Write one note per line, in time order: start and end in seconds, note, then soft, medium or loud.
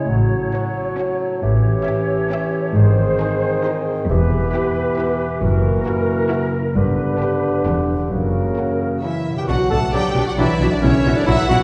0.00 0.11 C#3 soft
0.00 0.11 G#3 soft
0.00 1.38 C#4 medium
0.00 0.11 E4 soft
0.00 0.11 G#4 soft
0.00 0.97 C#5 soft
0.00 1.38 C#5 soft
0.09 0.44 A1 medium
0.09 1.41 A2 soft
0.09 0.44 A2 medium
0.09 1.42 F#3 soft
0.09 1.44 F#4 soft
0.09 1.42 F#4 medium
0.31 2.77 A3 soft
0.53 0.86 C#4 soft
0.53 0.86 F#4 soft
0.53 1.44 F#4 soft
0.53 0.87 C#5 soft
0.76 1.19 A4 soft
0.97 1.31 C#4 medium
0.97 1.30 F#4 soft
0.97 1.31 C#5 medium
0.97 2.30 C#5 soft
1.20 2.07 A4 soft
1.42 1.77 A1 medium
1.42 1.77 A2 medium
1.42 2.77 A2 medium
1.42 2.73 E3 medium
1.42 2.73 C#4 medium
1.42 2.77 G4 medium
1.42 2.73 G4 medium
1.42 2.72 C#5 medium
1.64 2.77 E3 soft
1.85 2.19 C#4 soft
1.85 2.77 G4 soft
1.85 2.19 G4 medium
1.85 2.19 E5 medium
2.08 2.52 A4 soft
2.30 2.64 C#4 medium
2.30 2.64 G4 medium
2.30 2.77 C#5 soft
2.30 2.63 E5 medium
2.53 2.77 A4 soft
2.75 3.10 G#1 medium
2.75 3.10 G#2 medium
2.75 4.11 G#2 medium
2.75 4.06 D#3 medium
2.75 4.06 C4 medium
2.75 4.06 G#4 medium
2.75 4.09 G#4 medium
2.75 3.80 C5 medium
2.98 4.11 D#3 soft
3.19 3.53 D#4 medium
3.19 3.53 G#4 medium
3.19 4.11 G#4 soft
3.19 3.52 C5 medium
3.42 3.85 C5 soft
3.64 3.98 D#4 medium
3.64 3.98 G#4 medium
3.64 3.98 C5 medium
3.64 4.10 D#5 soft
3.87 4.10 C5 medium
4.09 4.44 E1 medium
4.09 5.43 E2 medium
4.09 4.44 E2 medium
4.09 6.58 E3 medium
4.09 5.25 B3 medium
4.09 5.25 G4 medium
4.09 5.43 G4 medium
4.09 5.38 B4 medium
4.31 5.43 B2 soft
4.52 4.86 E4 medium
4.52 5.43 G4 medium
4.52 4.86 G4 medium
4.52 4.85 B4 medium
4.74 5.18 B4 soft
4.96 5.30 E4 medium
4.96 5.31 G4 medium
4.96 5.30 B4 medium
4.96 6.29 E5 soft
5.19 5.43 B4 soft
5.41 5.77 F#1 medium
5.41 5.77 F#2 medium
5.41 6.77 F#2 medium
5.41 6.73 A#3 medium
5.41 6.73 E4 medium
5.41 6.58 F#4 medium
5.41 6.76 A#4 medium
5.63 6.77 C#3 soft
5.85 6.19 E4 soft
5.85 6.77 F#4 medium
5.85 6.19 F#4 medium
5.85 6.19 A#4 medium
6.08 6.52 A#4 soft
6.30 6.64 E4 medium
6.30 6.64 F#4 medium
6.30 6.64 A#4 medium
6.30 6.77 E5 soft
6.53 6.77 A#4 soft
6.75 7.11 G1 medium
6.75 7.67 G2 medium
6.75 7.11 G2 medium
6.75 8.12 D3 soft
6.75 7.64 B3 medium
6.75 8.08 D4 medium
6.75 8.08 G4 medium
6.75 7.80 B4 medium
6.97 7.67 D3 soft
7.19 7.53 D4 soft
7.19 7.86 G4 soft
7.19 7.54 G4 soft
7.19 7.53 B4 soft
7.42 7.87 B4 soft
7.64 8.01 E1 soft
7.64 8.12 E2 soft
7.64 8.01 E2 medium
7.64 8.10 G3 soft
7.64 7.99 D4 soft
7.64 7.99 G4 soft
7.64 7.99 B4 soft
7.87 8.12 G4 soft
7.87 8.13 B4 soft
8.10 8.47 F#1 medium
8.10 9.50 F#2 soft
8.10 8.47 F#2 soft
8.10 9.25 C#3 soft
8.10 9.00 A#3 soft
8.10 9.00 C#4 soft
8.10 9.00 F#4 soft
8.10 9.01 A#4 soft
8.34 9.50 C#3 soft
8.57 8.91 C#4 soft
8.57 9.38 F#4 soft
8.57 8.91 F#4 soft
8.57 8.91 A#4 soft
8.80 9.24 A#4 soft
9.02 9.34 E3 medium
9.02 9.37 C#4 soft
9.02 9.34 E4 medium
9.02 9.37 F#4 soft
9.02 9.36 A#4 soft
9.02 9.50 C#5 soft
9.02 9.34 E5 soft
9.02 9.35 E5 soft
9.25 9.50 A#4 soft
9.30 10.63 B2 soft
9.34 9.48 G3 soft
9.34 10.77 D4 soft
9.34 9.47 G4 medium
9.34 9.42 G5 soft
9.34 9.48 G5 soft
9.39 10.72 F#4 soft
9.43 10.82 B4 soft
9.48 9.56 B1 medium
9.48 9.56 B2 medium
9.48 9.71 F#3 medium
9.48 9.56 D4 soft
9.48 9.70 F#4 medium
9.48 9.56 F#4 medium
9.48 9.90 F#5 medium
9.48 9.56 F#5 medium
9.48 9.55 F#5 medium
9.70 9.79 B1 soft
9.70 9.79 B2 soft
9.70 9.81 A3 medium
9.70 9.79 D4 soft
9.70 9.79 F#4 soft
9.70 9.80 A4 medium
9.70 9.93 A5 medium
9.70 9.77 A5 medium
9.92 10.01 B1 medium
9.92 10.01 B2 soft
9.92 10.10 F#3 soft
9.92 10.26 G3 medium
9.92 10.02 D4 soft
9.92 10.02 F#4 soft
9.92 10.26 G4 medium
9.92 10.82 D5 medium
9.92 10.09 D5 soft
9.92 10.26 G5 medium
9.92 10.27 G5 medium
10.15 10.23 B1 soft
10.15 10.23 B2 medium
10.15 10.24 D4 soft
10.15 10.24 F#4 soft
10.26 10.38 F#3 medium
10.26 10.32 F#4 medium
10.26 10.38 F#5 medium
10.26 10.32 F#5 medium
10.37 10.46 B1 medium
10.37 10.46 B2 medium
10.37 10.70 E3 medium
10.37 10.54 F#3 medium
10.37 10.46 D4 medium
10.37 10.73 E4 medium
10.37 10.46 F#4 medium
10.37 10.54 D5 medium
10.37 10.71 E5 medium
10.37 10.72 E5 medium
10.60 10.68 B1 medium
10.60 10.68 B2 medium
10.60 10.68 D4 medium
10.60 10.69 F#4 soft
10.64 11.63 B2 medium
10.69 10.82 D3 medium
10.69 10.81 D4 medium
10.69 11.63 E4 soft
10.69 10.83 D5 medium
10.73 11.63 F#4 soft
10.78 11.17 C#4 medium
10.78 11.63 A#4 soft
10.82 10.90 B1 medium
10.82 10.91 B2 medium
10.82 11.16 C#3 medium
10.82 10.91 E4 medium
10.82 10.91 F#4 medium
10.82 11.16 C#5 medium
10.82 11.26 E5 medium
11.05 11.13 B1 medium
11.05 11.13 B2 medium
11.05 11.13 E4 soft
11.05 11.13 F#4 medium
11.16 11.21 D3 medium
11.16 11.26 D4 medium
11.16 11.27 D5 medium
11.27 11.35 B1 medium
11.27 11.36 B2 medium
11.27 11.49 E3 medium
11.27 11.44 F#3 medium
11.27 11.37 E4 loud
11.27 11.36 E4 medium
11.27 11.36 F#4 medium
11.27 11.44 E5 medium
11.27 11.49 E5 medium
11.27 11.50 E5 medium
11.27 11.63 F#5 medium
11.49 11.57 B1 medium
11.49 11.58 B2 medium
11.49 11.60 F#3 medium
11.49 11.58 E4 medium
11.49 11.59 F#4 medium
11.49 11.58 F#4 medium
11.49 11.63 F#5 medium
11.49 11.58 F#5 medium